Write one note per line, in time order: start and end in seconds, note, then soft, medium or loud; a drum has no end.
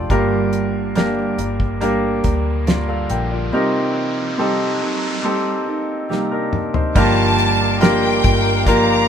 0.00 0.12 A3 medium
0.00 0.10 D4 medium
0.00 0.30 F4 soft
0.00 0.10 G4 medium
0.00 0.11 G4 medium
0.00 0.10 A4 medium
0.00 0.12 A4 medium
0.00 0.11 C5 soft
0.00 0.29 D5 medium
0.00 0.12 F5 soft
0.00 0.11 G5 medium
0.00 0.11 A5 medium
0.09 1.34 G1 medium
0.09 0.94 G2 medium
0.09 1.35 G2 medium
0.09 0.94 D3 medium
0.09 0.96 G3 medium
0.09 0.91 A#3 medium
0.09 0.96 A#3 medium
0.09 0.91 D4 medium
0.09 0.96 D4 medium
0.09 0.92 G4 medium
0.09 0.97 A#4 medium
0.09 0.92 A#4 medium
0.09 kick medium
0.09 closed hi-hat medium
0.09 riser medium
0.53 closed hi-hat medium
0.95 1.38 G2 medium
0.95 1.38 D3 medium
0.95 1.39 G3 medium
0.95 1.77 A#3 medium
0.95 1.39 A#3 medium
0.95 1.77 D4 medium
0.95 1.38 D4 medium
0.95 1.77 G4 medium
0.95 1.78 A#4 medium
0.95 1.37 A#4 medium
0.95 snare medium
0.95 closed hi-hat medium
1.38 2.20 G1 medium
1.38 1.80 G3 soft
1.38 1.81 A#3 soft
1.38 1.81 D4 soft
1.38 1.81 A#4 soft
1.38 closed hi-hat medium
1.60 kick medium
1.81 2.24 G3 medium
1.81 2.62 A#3 medium
1.81 2.24 A#3 medium
1.81 2.62 D4 medium
1.81 2.23 D4 medium
1.81 2.63 G4 medium
1.81 2.63 A#4 medium
1.81 2.22 A#4 medium
1.81 closed hi-hat medium
2.23 3.06 D2 medium
2.23 2.66 G3 soft
2.23 2.67 A#3 soft
2.23 2.67 D4 soft
2.23 2.67 A#4 medium
2.23 kick medium
2.23 closed hi-hat medium
2.66 3.52 G2 medium
2.66 3.51 D3 medium
2.66 3.52 G3 medium
2.66 3.53 A#3 medium
2.66 3.53 D4 medium
2.66 2.88 F4 soft
2.66 3.54 A#4 medium
2.66 2.87 D5 soft
2.66 snare medium
2.66 closed hi-hat medium
2.88 3.09 A4 soft
2.88 3.09 F5 medium
3.10 3.50 A#1 medium
3.10 3.30 A#4 soft
3.10 3.30 G5 soft
3.10 closed hi-hat medium
3.31 3.72 F4 soft
3.31 3.72 D5 soft
3.52 4.36 C3 medium
3.52 4.78 C3 medium
3.52 4.38 G3 medium
3.52 4.38 A#3 medium
3.52 4.34 C4 medium
3.52 4.34 D#4 medium
3.52 4.38 D#4 medium
3.52 4.34 G4 medium
3.52 4.39 A#4 medium
3.52 4.35 A#4 medium
4.38 4.81 C3 medium
4.38 4.81 G3 medium
4.38 4.81 A#3 medium
4.38 5.19 C4 medium
4.38 5.20 D#4 medium
4.38 4.81 D#4 medium
4.38 5.20 G4 medium
4.38 5.20 A4 medium
4.38 4.79 A#4 medium
4.80 5.23 A#3 soft
4.80 5.24 D#4 soft
4.80 5.24 A#4 soft
5.23 5.66 G3 medium
5.23 5.67 A#3 medium
5.23 6.05 C4 medium
5.23 6.06 D#4 medium
5.23 5.66 D#4 medium
5.23 6.06 G4 medium
5.23 6.06 A4 medium
5.23 5.65 A#4 medium
5.66 6.09 A#3 soft
5.66 6.10 D#4 soft
5.66 6.09 A#4 soft
6.09 6.95 C3 medium
6.09 6.95 G3 medium
6.09 6.30 A#3 soft
6.09 6.96 A#3 medium
6.09 6.96 D#4 medium
6.09 6.30 G4 soft
6.09 6.96 A#4 medium
6.09 snare soft
6.31 6.72 D4 soft
6.31 6.72 A#4 medium
6.53 mid tom medium
6.74 7.15 D#4 soft
6.74 7.15 C5 soft
6.74 floor tom medium
6.95 8.20 G1 medium
6.95 7.81 G2 medium
6.95 8.20 G2 medium
6.95 9.08 D3 medium
6.95 7.79 F3 medium
6.95 7.77 A#3 medium
6.95 7.81 A#3 medium
6.95 7.77 D4 medium
6.95 7.82 D4 medium
6.95 7.77 F4 medium
6.95 7.77 G4 medium
6.95 7.83 G4 medium
6.95 9.08 A#4 medium
6.95 7.78 A#4 medium
6.95 9.08 F5 medium
6.95 9.08 G5 medium
6.95 7.77 A5 medium
6.95 9.08 D6 medium
6.95 kick loud
6.95 crash medium
7.38 closed hi-hat medium
7.80 8.23 F3 medium
7.80 8.62 A#3 medium
7.80 8.24 A#3 medium
7.80 8.62 D4 medium
7.80 8.23 D4 medium
7.80 8.63 F4 medium
7.80 8.63 G4 medium
7.80 8.63 A#4 medium
7.80 8.67 G5 medium
7.80 snare loud
7.80 closed hi-hat medium
8.23 9.06 G1 medium
8.23 8.64 F3 soft
8.23 8.66 A#3 soft
8.23 8.66 D4 soft
8.23 8.66 G4 medium
8.23 kick medium
8.23 closed hi-hat medium
8.66 9.08 F3 medium
8.66 9.08 A#3 medium
8.66 9.08 D4 medium
8.66 9.08 F4 medium
8.66 9.08 G4 medium
8.66 9.08 A#4 medium
8.66 9.08 A#5 loud
8.66 kick medium
8.66 closed hi-hat medium